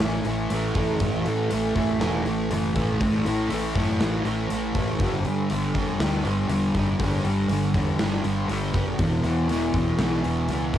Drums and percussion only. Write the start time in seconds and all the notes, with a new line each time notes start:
0.00 snare, open hi-hat
0.25 open hi-hat
0.50 open hi-hat
0.75 kick, open hi-hat
1.00 kick, open hi-hat
1.26 open hi-hat
1.51 open hi-hat
1.76 kick, open hi-hat
2.01 snare, open hi-hat
2.26 open hi-hat
2.51 open hi-hat
2.76 kick, open hi-hat
3.01 kick, open hi-hat
3.26 open hi-hat
3.50 open hi-hat
3.75 kick
4.01 snare, open hi-hat
4.25 open hi-hat
4.50 open hi-hat
4.75 kick, open hi-hat
5.00 kick, open hi-hat
5.25 open hi-hat
5.50 open hi-hat
5.75 kick, open hi-hat
6.00 snare, open hi-hat
6.25 open hi-hat
6.49 open hi-hat
6.75 kick, open hi-hat
7.00 kick, open hi-hat
7.25 open hi-hat
7.49 open hi-hat
7.74 kick, open hi-hat
7.99 snare, open hi-hat
8.24 open hi-hat
8.49 open hi-hat
8.74 kick, open hi-hat
8.99 kick, open hi-hat
9.24 snare, open hi-hat
9.49 open hi-hat
9.74 kick, open hi-hat
9.99 snare, open hi-hat
10.24 open hi-hat
10.48 open hi-hat
10.74 kick, open hi-hat